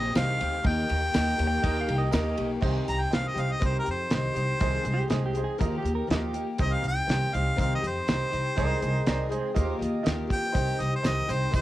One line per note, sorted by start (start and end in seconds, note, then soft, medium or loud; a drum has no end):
0.00 0.11 A#1 medium
0.00 0.15 C4 soft
0.00 0.63 C4 medium
0.00 0.16 D#4 medium
0.00 0.62 D#4 medium
0.00 0.15 G4 medium
0.00 0.61 G4 medium
0.00 0.63 C5 medium
0.00 0.12 D#5 medium
0.15 0.36 C2 medium
0.15 0.40 C3 medium
0.15 0.40 D#3 medium
0.15 0.40 C4 medium
0.15 0.51 D#4 medium
0.15 0.39 D#4 medium
0.15 0.51 G4 medium
0.15 0.38 G4 medium
0.15 0.51 C5 medium
0.15 0.62 F5 medium
0.15 snare loud
0.15 ride medium
0.15 tambourine medium
0.39 0.61 D2 medium
0.39 0.63 C4 soft
0.39 0.63 D#4 medium
0.39 0.64 G4 medium
0.39 ride medium
0.62 0.85 D#2 loud
0.62 0.89 D#3 medium
0.62 2.60 A#3 medium
0.62 0.89 A#3 medium
0.62 2.60 D#4 medium
0.62 1.00 D#4 medium
0.62 0.89 D#4 loud
0.62 2.60 G4 medium
0.62 1.00 G4 medium
0.62 0.87 G4 medium
0.62 1.00 A#4 medium
0.62 2.10 G5 loud
0.62 kick loud
0.62 ride medium
0.88 1.10 D#2 medium
0.88 1.13 A#3 soft
0.88 1.13 D#4 medium
0.88 1.14 G4 medium
0.88 ride medium
1.14 1.35 D#2 medium
1.14 1.39 D#3 medium
1.14 1.39 A#3 medium
1.14 1.50 D#4 medium
1.14 1.38 D#4 medium
1.14 1.50 G4 medium
1.14 1.36 G4 medium
1.14 1.50 A#4 medium
1.14 snare loud
1.14 ride medium
1.14 tambourine medium
1.37 1.59 D#2 medium
1.37 1.62 A#3 medium
1.37 1.63 D#4 medium
1.37 1.63 G4 medium
1.37 ride medium
1.47 1.63 G5 medium
1.62 1.84 D#2 medium
1.62 1.88 D#3 medium
1.62 1.88 A#3 medium
1.62 1.98 D#4 medium
1.62 1.87 D#4 medium
1.62 1.99 G4 medium
1.62 1.86 G4 medium
1.62 1.99 A#4 loud
1.62 1.80 D#5 medium
1.62 kick medium
1.62 ride loud
1.81 1.97 F5 medium
1.87 2.08 C2 medium
1.87 2.11 A#3 soft
1.87 2.12 D#4 medium
1.87 2.13 G4 medium
1.87 ride medium
1.98 2.13 D#5 medium
2.11 2.33 D#2 medium
2.11 2.37 D#3 medium
2.11 2.38 A#3 medium
2.11 2.48 D#4 medium
2.11 2.38 D#4 medium
2.11 2.48 G4 medium
2.11 2.36 G4 loud
2.11 2.48 A#4 loud
2.11 2.50 D#5 medium
2.11 snare loud
2.11 ride loud
2.11 tambourine loud
2.37 2.58 B1 medium
2.37 2.62 A#3 medium
2.37 2.62 D#4 medium
2.37 2.61 G4 medium
2.37 ride medium
2.61 2.79 C2 medium
2.61 2.87 C3 medium
2.61 2.87 D#3 medium
2.61 2.87 C4 medium
2.61 2.98 D#4 loud
2.61 2.86 D#4 medium
2.61 2.98 G4 loud
2.61 2.85 G4 loud
2.61 2.98 C5 loud
2.61 kick loud
2.61 crash loud
2.86 3.04 C2 medium
2.86 3.10 C4 soft
2.86 3.11 D#4 soft
2.86 3.12 G4 soft
2.86 3.03 A#5 medium
2.86 closed hi-hat medium
3.01 3.12 G5 medium
3.11 3.29 C2 medium
3.11 3.36 D#3 medium
3.11 3.36 C4 medium
3.11 3.29 D#4 medium
3.11 3.35 D#4 medium
3.11 3.29 G4 medium
3.11 3.33 G4 medium
3.11 3.29 C5 medium
3.11 3.29 F5 medium
3.11 snare loud
3.11 closed hi-hat medium
3.27 3.42 D#5 medium
3.34 3.52 C2 medium
3.34 3.59 C4 soft
3.34 3.59 D#4 soft
3.34 3.55 D#4 medium
3.34 3.59 G4 medium
3.34 3.55 G4 medium
3.34 3.55 C5 medium
3.34 closed hi-hat medium
3.41 3.54 F5 medium
3.52 3.62 D#5 medium
3.59 3.78 C2 medium
3.59 3.85 C3 medium
3.59 3.86 D#3 medium
3.59 3.85 C4 medium
3.59 3.84 D#4 medium
3.59 3.98 D#4 medium
3.59 3.82 G4 medium
3.59 kick medium
3.59 closed hi-hat medium
3.63 3.98 G4 medium
3.63 3.98 C5 medium
3.63 3.76 C5 medium
3.79 3.88 A#4 medium
3.84 4.03 F2 medium
3.84 4.10 C4 soft
3.84 4.11 D#4 soft
3.84 4.10 G4 soft
3.84 closed hi-hat medium
3.91 4.13 C5 medium
4.09 4.28 C2 medium
4.09 4.35 D#3 medium
4.09 4.35 C4 medium
4.09 4.47 D#4 medium
4.09 4.34 D#4 medium
4.09 4.47 G4 medium
4.09 4.32 G4 medium
4.09 4.47 C5 medium
4.09 snare loud
4.09 closed hi-hat medium
4.14 5.09 C5 medium
4.33 4.52 C2 medium
4.33 4.60 C4 soft
4.33 4.60 D#4 soft
4.33 4.60 G4 medium
4.33 closed hi-hat medium
4.59 4.77 C2 medium
4.59 4.85 C3 medium
4.59 4.85 D#3 medium
4.59 4.85 G#3 medium
4.59 4.84 C4 medium
4.59 4.96 D#4 loud
4.59 4.96 G#4 medium
4.59 4.82 G#4 medium
4.59 4.96 C5 loud
4.59 kick loud
4.59 closed hi-hat medium
4.83 5.01 C2 loud
4.83 5.08 G#3 medium
4.83 5.08 C4 medium
4.83 5.09 G#4 medium
4.83 closed hi-hat medium
4.94 5.10 G4 medium
5.08 5.43 C2 medium
5.08 5.34 D#3 medium
5.08 5.35 G#3 medium
5.08 5.34 C4 medium
5.08 5.28 D#4 medium
5.08 5.28 G#4 medium
5.08 5.25 G#4 medium
5.08 5.32 G#4 medium
5.08 5.28 C5 loud
5.08 snare medium
5.08 closed hi-hat medium
5.26 5.42 G4 medium
5.33 5.58 G#3 soft
5.33 5.59 C4 medium
5.33 5.59 G#4 medium
5.33 5.54 G#4 medium
5.33 5.54 C5 medium
5.33 closed hi-hat medium
5.37 5.54 D#4 medium
5.44 5.60 G#4 medium
5.58 5.77 D#2 loud
5.58 5.84 D#3 medium
5.58 5.84 F3 medium
5.58 5.84 A#3 loud
5.58 5.83 D#4 medium
5.58 5.96 F4 medium
5.58 5.81 G4 loud
5.58 5.96 G4 medium
5.58 5.76 A#4 medium
5.58 5.96 D#5 medium
5.58 kick medium
5.58 closed hi-hat loud
5.78 5.93 G4 medium
5.82 6.00 D#2 medium
5.82 6.07 A#3 soft
5.82 6.07 D#4 medium
5.82 6.08 G4 medium
5.82 closed hi-hat medium
5.95 6.10 A#4 medium
6.07 6.42 D#2 medium
6.07 6.33 F3 medium
6.07 6.34 A#3 medium
6.07 6.34 D#4 medium
6.07 6.45 F4 medium
6.07 6.32 G4 medium
6.07 6.46 G4 medium
6.07 6.45 D#5 medium
6.07 snare loud
6.07 closed hi-hat medium
6.11 6.47 G4 loud
6.33 6.59 A#3 medium
6.33 6.58 D#4 medium
6.33 6.59 G4 medium
6.33 closed hi-hat medium
6.58 6.76 C2 medium
6.58 6.83 C3 medium
6.58 6.84 D#3 medium
6.58 6.83 C4 medium
6.58 6.82 D#4 medium
6.58 6.95 D#4 loud
6.58 6.95 G4 medium
6.58 6.81 G4 medium
6.58 6.95 C5 loud
6.58 6.75 D#5 medium
6.58 kick loud
6.58 closed hi-hat medium
6.73 6.84 F5 medium
6.82 6.99 C2 medium
6.82 7.06 C4 soft
6.82 7.07 D#4 soft
6.82 7.08 G4 medium
6.82 closed hi-hat medium
6.88 7.36 G5 loud
7.06 7.24 C2 medium
7.06 7.32 D#3 medium
7.06 7.33 C4 medium
7.06 7.31 D#4 medium
7.06 7.27 D#4 medium
7.06 7.31 G4 medium
7.06 7.27 G4 medium
7.06 7.27 C5 medium
7.06 snare loud
7.06 closed hi-hat medium
7.32 7.50 C2 loud
7.32 7.56 C4 soft
7.32 7.56 D#4 medium
7.32 7.52 D#4 medium
7.32 7.57 G4 medium
7.32 7.52 G4 medium
7.32 7.52 C5 medium
7.32 7.58 F5 loud
7.32 closed hi-hat medium
7.56 7.75 C2 medium
7.56 7.82 C3 medium
7.56 7.82 D#3 medium
7.56 7.82 C4 medium
7.56 7.82 D#4 loud
7.56 7.94 D#4 medium
7.56 7.94 G4 medium
7.56 7.80 G4 medium
7.56 7.94 C5 medium
7.56 kick medium
7.56 closed hi-hat medium
7.61 7.71 F5 medium
7.75 7.84 D#5 medium
7.81 7.99 F2 medium
7.81 8.07 C4 soft
7.81 8.07 G4 soft
7.81 closed hi-hat medium
7.88 9.30 C5 loud
8.06 8.24 C2 medium
8.06 8.32 D#3 medium
8.06 8.33 C4 medium
8.06 8.43 D#4 medium
8.06 8.31 D#4 medium
8.06 8.43 G4 medium
8.06 8.29 G4 medium
8.06 8.43 C5 medium
8.06 snare loud
8.06 closed hi-hat medium
8.31 8.49 C2 medium
8.31 8.56 C4 soft
8.31 8.57 D#4 medium
8.31 8.56 G4 medium
8.31 closed hi-hat medium
8.56 8.74 C2 medium
8.56 8.81 C3 medium
8.56 8.81 D#3 medium
8.56 8.82 G#3 loud
8.56 8.81 C4 loud
8.56 8.92 D#4 loud
8.56 8.92 G#4 loud
8.56 8.80 G#4 loud
8.56 8.81 A#4 medium
8.56 8.93 C5 loud
8.56 kick medium
8.56 closed hi-hat medium
8.60 8.82 D#5 medium
8.81 8.98 C2 loud
8.81 9.06 G#3 soft
8.81 9.07 C4 medium
8.81 9.06 G#4 medium
8.81 9.06 D#5 medium
8.81 closed hi-hat medium
9.06 9.39 C2 medium
9.06 9.31 D#3 medium
9.06 9.31 G#3 medium
9.06 9.29 C4 medium
9.06 9.24 D#4 medium
9.06 9.24 G#4 medium
9.06 9.28 G#4 medium
9.06 9.30 A#4 medium
9.06 9.24 D5 medium
9.06 9.32 D#5 medium
9.06 snare loud
9.06 closed hi-hat medium
9.29 9.56 G#3 medium
9.29 9.56 C4 medium
9.29 9.48 D#4 medium
9.29 9.55 G#4 medium
9.29 9.54 G#4 medium
9.29 9.49 G#4 medium
9.29 9.49 C5 medium
9.29 9.54 C5 medium
9.29 closed hi-hat medium
9.54 9.72 D#2 medium
9.54 9.80 D#3 medium
9.54 9.80 A#3 loud
9.54 9.91 F4 medium
9.54 9.80 F4 medium
9.54 9.78 G4 medium
9.54 9.91 G4 medium
9.54 9.78 G4 loud
9.54 9.79 C5 medium
9.54 9.91 D#5 medium
9.54 kick medium
9.54 closed hi-hat medium
9.79 9.97 D#2 medium
9.79 10.04 A#3 soft
9.79 10.05 F4 medium
9.79 10.05 G4 medium
9.79 10.16 D#5 medium
9.79 closed hi-hat medium
10.03 10.38 D#2 medium
10.03 10.29 D#3 medium
10.03 10.29 A#3 medium
10.03 10.40 F4 medium
10.03 10.28 F4 medium
10.03 10.40 G4 medium
10.03 10.26 G4 medium
10.03 10.40 D#5 loud
10.03 snare loud
10.03 closed hi-hat loud
10.23 10.45 A3 medium
10.23 10.46 B3 medium
10.27 10.55 A#3 medium
10.27 10.47 C4 medium
10.27 10.54 F4 medium
10.27 10.53 G4 medium
10.27 kick medium
10.27 closed hi-hat medium
10.31 10.49 D4 medium
10.31 10.50 E4 medium
10.31 10.82 G5 loud
10.35 10.51 F4 medium
10.35 10.51 G4 medium
10.42 10.54 A4 medium
10.42 10.56 B4 medium
10.47 10.51 C5 medium
10.47 10.58 D5 medium
10.52 10.71 C2 medium
10.52 10.79 C3 medium
10.52 10.79 D#3 medium
10.52 11.62 C4 medium
10.52 10.79 C4 medium
10.52 10.89 D#4 loud
10.52 11.62 D#4 medium
10.52 10.78 D#4 medium
10.52 10.89 G4 medium
10.52 11.62 G4 medium
10.52 10.76 G4 loud
10.52 10.89 C5 loud
10.52 11.62 C5 medium
10.52 kick loud
10.52 closed hi-hat medium
10.67 tambourine soft
10.78 10.96 C2 medium
10.78 11.02 C4 soft
10.78 11.03 D#4 soft
10.78 11.03 G4 medium
10.78 10.92 D#5 medium
10.78 closed hi-hat medium
10.78 tambourine soft
10.96 11.09 C5 medium
11.02 11.20 C2 medium
11.02 11.28 D#3 medium
11.02 11.28 C4 medium
11.02 11.21 D#4 medium
11.02 11.27 D#4 medium
11.02 11.21 G4 medium
11.02 11.26 G4 medium
11.02 11.21 C5 medium
11.02 snare loud
11.02 closed hi-hat medium
11.02 tambourine medium
11.07 11.33 D#5 loud
11.18 tambourine soft
11.27 11.45 C2 loud
11.27 11.50 C4 soft
11.27 11.46 D#4 medium
11.27 11.51 D#4 soft
11.27 11.51 G4 medium
11.27 11.46 G4 medium
11.27 11.46 C5 medium
11.27 closed hi-hat medium
11.27 tambourine medium
11.32 11.54 C5 loud
11.50 11.62 C2 medium
11.50 11.62 C3 medium
11.50 11.62 D#3 medium
11.50 11.62 C4 medium
11.50 11.62 D#4 medium
11.50 11.62 G4 medium
11.50 11.62 C5 medium
11.50 kick medium
11.50 closed hi-hat medium
11.50 tambourine medium
11.56 11.62 C5 loud